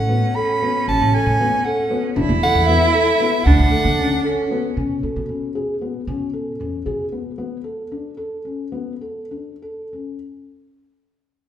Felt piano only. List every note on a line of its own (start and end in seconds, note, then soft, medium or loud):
0.09 0.27 B3 medium
0.36 0.54 A4 medium
0.62 0.80 B3 medium
0.86 1.05 C#4 medium
1.14 1.32 A4 medium
1.40 1.58 B3 medium
1.66 1.83 A4 medium
1.90 2.08 B3 medium
2.16 2.34 D4 loud
2.42 2.60 A4 medium
2.68 2.86 B3 medium
2.94 3.12 A4 medium
3.20 3.38 B3 medium
3.46 3.64 D4 medium
3.71 3.89 A4 medium
3.98 4.16 C#4 medium
4.24 4.42 A4 medium
4.51 4.69 B3 medium
4.76 4.95 C#4 medium
5.03 5.21 A4 medium
5.29 5.47 C#4 medium
5.55 5.73 G#4 medium
5.81 5.99 B3 medium
6.08 6.26 C#4 medium
6.33 6.51 A4 medium
6.60 6.77 C#4 medium
6.86 7.04 G#4 medium
7.12 7.30 B3 medium
7.38 7.56 B3 medium
7.64 7.82 A4 medium
7.92 8.10 D4 medium
8.17 8.36 A4 medium
8.45 8.64 C#4 medium
8.72 8.92 B3 medium
9.01 9.22 A4 medium
9.31 9.52 D4 medium
9.62 9.83 A4 medium
9.93 10.14 C#4 soft